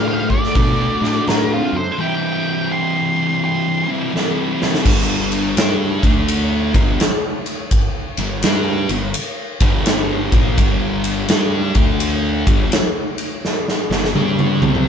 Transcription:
Already playing: fingered electric bass A2, distorted electric guitar D3 A3 D4 F#4
0.08 lead electric guitar C5 F5
0.30 lead electric guitar A4 D5, kick
0.44 snare
0.55 fingered electric bass B2, distorted electric guitar D3 A3 D4, kick, open hi-hat
0.59 distorted electric guitar F#4
1.01 fingered electric bass A2, distorted electric guitar A3 D4 F#4, snare
1.05 distorted electric guitar D3
1.27 fingered electric bass A2, lead electric guitar F#4 A#4, snare, open hi-hat
1.53 lead electric guitar C4 F4
1.73 fingered electric bass F#2, lead electric guitar C5
1.79 lead electric guitar A4
1.98 distorted electric guitar E3 G3 C4 E4, lead electric guitar G5
2.02 lead electric guitar E5
2.72 lead electric guitar G5 C6
3.44 lead electric guitar G5 C6
3.88 distorted electric guitar E3 G3 C4 E4
4.13 distorted electric guitar E3 G3 C4 E4, snare
4.62 snare
4.74 snare
4.85 fingered electric bass G1, distorted electric guitar G2 D3 G3, kick, crash
5.32 ride
5.57 fingered electric bass G2, distorted electric guitar G3 D4 G4, snare, ride
6.03 fingered electric bass D2, distorted electric guitar D3 A3 D4, kick, ride
6.28 ride
6.74 fingered electric bass G1, distorted electric guitar G2 D3 G3, kick, ride
7.00 snare, ride
7.46 ride
7.71 kick, ride
8.17 fingered electric bass G1, distorted electric guitar G2 D3, ride
8.43 fingered electric bass G2, distorted electric guitar G3 D4 G4, snare, ride
8.89 fingered electric bass G1, distorted electric guitar G2 D3, ride
9.14 ride
9.60 fingered electric bass G1, distorted electric guitar G2 D3 G3, kick, ride
9.86 snare, ride
10.32 fingered electric bass A#1, distorted electric guitar A#2 F3 A#3, kick, ride
10.58 fingered electric bass G1, distorted electric guitar G2 D3 G3, kick, ride
11.04 ride
11.29 fingered electric bass G2, distorted electric guitar G3 D4 G4, snare, ride
11.75 fingered electric bass D2, distorted electric guitar D3 A3 D4, kick, ride
12.00 ride
12.47 fingered electric bass G1, distorted electric guitar G2 D3 G3, kick, ride
12.72 snare, ride
13.18 ride
13.45 snare
13.68 snare
13.90 fingered electric bass G1, distorted electric guitar G2 D3, snare
14.04 snare
14.15 fingered electric bass G2, distorted electric guitar G3 D4 G4, high tom
14.39 high tom
14.62 fingered electric bass C2, distorted electric guitar C3 G3 C4, high tom
14.75 mid tom

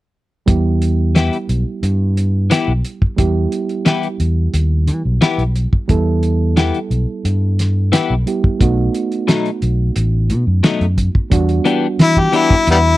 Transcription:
0.46 fingered electric bass E2, reed electric piano G3 B3 E4 G4, kick, closed hi-hat
0.82 closed hi-hat
1.15 clean electric guitar E3 B3 E4 G4, snare, closed hi-hat
1.33 closed hi-hat
1.49 fingered electric bass B1, closed hi-hat
1.83 fingered electric bass G2, closed hi-hat
2.17 closed hi-hat
2.50 clean electric guitar E3 B3 E4 G4, snare, closed hi-hat
2.68 fingered electric bass B1
2.85 closed hi-hat
3.02 muted fingered electric bass stroke, kick
3.16 fingered electric bass E2, reed electric piano G3 B3 E4 G4, kick, closed hi-hat
3.52 closed hi-hat
3.69 closed hi-hat
3.85 clean electric guitar E3 B3 E4 G4, snare, closed hi-hat
4.03 closed hi-hat
4.20 fingered electric bass E2, closed hi-hat
4.54 fingered electric bass D#2, closed hi-hat
4.87 fingered electric bass E3, closed hi-hat
5.05 fingered electric bass B1
5.21 clean electric guitar E3 B3 E4 G4, snare, closed hi-hat
5.38 fingered electric bass B1, closed hi-hat
5.56 closed hi-hat
5.73 muted fingered electric bass stroke, kick
5.88 fingered electric bass E2, reed electric piano G3 B3 E4 A4, kick, closed hi-hat
6.23 closed hi-hat
6.57 clean electric guitar E3 B3 E4 G4, snare, closed hi-hat
6.74 closed hi-hat
6.91 fingered electric bass B1, closed hi-hat
7.25 fingered electric bass G2, closed hi-hat
7.59 snare, closed hi-hat
7.92 clean electric guitar E3 B3 E4 G4, snare, closed hi-hat
8.10 fingered electric bass B1
8.26 reed electric piano G3 B3 E4 G4, closed hi-hat
8.44 muted fingered electric bass stroke, kick
8.59 fingered electric bass B1, reed electric piano A3 B3 D#4 F#4, kick, closed hi-hat
8.95 closed hi-hat
9.12 closed hi-hat
9.28 clean electric guitar B2 F#3 A3 D#4, snare, closed hi-hat
9.46 closed hi-hat
9.62 fingered electric bass B1, closed hi-hat
9.96 fingered electric bass A1, closed hi-hat
10.30 fingered electric bass B2, closed hi-hat
10.47 fingered electric bass F#2
10.63 clean electric guitar B2 F#3 A3 D#4, muted fingered electric bass stroke, snare, closed hi-hat
10.81 fingered electric bass F#2, closed hi-hat
10.98 kick, closed hi-hat
11.15 kick
11.30 fingered electric bass E2, reed electric piano G3 B3 D4 F#4, kick, closed hi-hat
11.49 closed hi-hat
11.65 clean electric guitar E3 B3 D4 G4, closed hi-hat
11.99 fingered electric bass E3, harmonica E4, snare, closed hi-hat
12.17 harmonica G4, kick
12.32 clean electric guitar E3 B3 D4 G4, closed hi-hat
12.37 harmonica E4
12.50 kick
12.67 fingered electric bass E2, harmonica G3 B3 E4, closed hi-hat

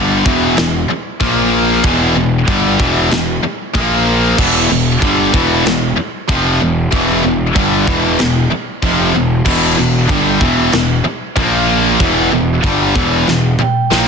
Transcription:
Already playing: picked electric bass G1, distorted electric guitar G2 D3 G3
0.25 picked electric bass E1, distorted electric guitar E2 B2 E3, kick
0.56 picked electric bass E1, distorted electric guitar E2 B2, snare, china
0.88 muted picked electric bass stroke, muted distorted electric guitar stroke
1.20 picked electric bass A#1, distorted electric guitar A#2 F3 A#3, kick, china
1.83 picked electric bass E1, distorted electric guitar E2 B2 E3, kick, china
2.16 picked electric bass E1, distorted electric guitar E2 B2
2.47 picked electric bass G1, distorted electric guitar G2 D3 G3, kick, china
2.79 picked electric bass E1, distorted electric guitar E2 B2 E3, kick
3.10 picked electric bass E1, distorted electric guitar E2 B2, snare, china
3.43 muted picked electric bass stroke, muted distorted electric guitar stroke
3.74 picked electric bass A#1, distorted electric guitar A#2 F3 A#3, kick, china
4.38 picked electric bass E1, distorted electric guitar E2 B2 E3, kick, china, crash
4.70 picked electric bass E1, distorted electric guitar E2 B2
5.02 picked electric bass G1, distorted electric guitar G2 D3 G3, kick, china
5.34 picked electric bass E1, distorted electric guitar E2 B2 E3, kick
5.66 picked electric bass E1, distorted electric guitar E2 B2, snare, china
5.97 muted distorted electric guitar stroke, muted picked electric bass stroke
6.29 picked electric bass F1, distorted electric guitar F2 C3 F3, kick, china
6.61 picked electric bass E1, distorted electric guitar E2 B2
6.92 picked electric bass E1, distorted electric guitar E2 B2 E3, kick, china
7.24 picked electric bass E1, distorted electric guitar E2 B2
7.56 picked electric bass G1, distorted electric guitar G2 D3 G3, kick, china
7.87 picked electric bass E1, distorted electric guitar E2 B2 E3, kick
8.19 picked electric bass E1, distorted electric guitar E2 B2, snare, china
8.51 muted distorted electric guitar stroke, muted picked electric bass stroke
8.82 picked electric bass F1, distorted electric guitar F2 C3 F3, kick, china
9.15 picked electric bass E1, distorted electric guitar E2 B2
9.46 picked electric bass E1, distorted electric guitar E2 B2 E3, kick, crash, china
9.78 picked electric bass E1, distorted electric guitar E2 B2
10.09 picked electric bass G1, distorted electric guitar G2 D3 G3, kick, china
10.41 picked electric bass E1, distorted electric guitar E2 B2 E3, kick
10.72 picked electric bass E1, distorted electric guitar E2 B2, snare, china
11.04 muted distorted electric guitar stroke, muted picked electric bass stroke
11.36 picked electric bass A#1, distorted electric guitar A#2 F3 A#3, kick, china
12.00 picked electric bass E1, distorted electric guitar E2 B2 E3, kick, china
12.32 picked electric bass E1, distorted electric guitar E2 B2
12.63 picked electric bass G1, distorted electric guitar G2 D3 G3, kick, china
12.95 picked electric bass E1, distorted electric guitar E2 B2 E3, kick
13.28 picked electric bass E1, distorted electric guitar E2 B2, snare
13.59 vibraphone G5, muted picked electric bass stroke, muted distorted electric guitar stroke, mid tom
13.91 picked electric bass A#1, distorted electric guitar A#2 F3 A#3, snare

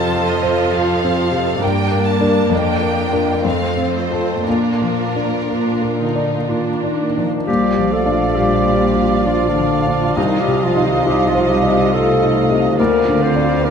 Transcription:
Already playing: cello section F2, grand piano F2 C3 C4 F4, viola section F3 F4, violin section A4 C5 A5
0.14 grand piano A4
0.27 violin section D#5
0.43 grand piano C5
0.72 grand piano F4, violin section F5
1.04 grand piano C4
1.31 grand piano C3
1.61 grand piano G2, cello section G2, viola section A#3 D4, violin section A#4 G5
1.91 grand piano A#3
2.06 violin section A5
2.21 grand piano D4 A#4
2.50 grand piano F2, cello section F2, violin section F4 G5
2.81 grand piano A#3
3.12 grand piano D4 A#4
3.43 grand piano F2, viola section A3 C4, violin section C5 F5
3.77 grand piano C4
3.95 violin section C5
4.11 grand piano F4 A4
4.45 cello section A#2, grand piano A#2, viola section A#3 D4, violin section A#4
4.82 grand piano F3
5.16 grand piano D4
5.48 viola section D4, grand piano F4
5.82 grand piano A#4
5.98 french horn section D3, clarinet D4, viola section D#4
6.16 grand piano D5
6.48 french horn section D#3, viola section D4, clarinet D#4, grand piano F4
6.83 grand piano D4
7.17 grand piano F3
7.47 double bass section A#1, grand piano A#2, cello section A#2, bassoon F3, french horn section G3, viola section F4, clarinet G4, oboe D5, violin section D5 F5, flute F5
7.78 grand piano F3
7.92 french horn section A3, clarinet A4
8.06 grand piano D4
8.35 french horn section G3, grand piano F4, clarinet G4
8.65 grand piano D5
8.95 grand piano F4
9.26 bassoon F3, french horn section F3, grand piano D4, clarinet F4, oboe D5, flute F5
9.49 french horn section D3, clarinet D4
9.56 grand piano F3
9.87 grand piano D4
10.15 double bass section C2, grand piano C2, cello section C3, french horn section D#3, bassoon F3, clarinet D#4, violin section D#5, oboe D#5, flute F5
10.39 french horn section G3, clarinet G4
10.47 grand piano C3
10.62 french horn section F3, clarinet F4
10.76 grand piano D#4
10.83 french horn section D#3, clarinet D#4
11.06 french horn section G3, grand piano F4, clarinet G4
11.28 french horn section F3, clarinet F4
11.35 grand piano C5
11.49 french horn section G3, clarinet G4
11.63 grand piano D#5
11.92 bassoon F3, french horn section A3, grand piano F4, clarinet A4, oboe D#5, flute F5
12.22 grand piano D#4
12.50 grand piano C3
12.78 double bass section D2, grand piano D2, cello section D3, bassoon F3, french horn section A#3, viola section F4, clarinet A#4, violin section D5 F5, oboe D5, flute F5
13.09 grand piano D3
13.21 french horn section C4, clarinet C5
13.36 grand piano D4
13.62 bassoon F3, french horn section A#3, clarinet A#4, oboe D5
13.67 grand piano F4, flute F5

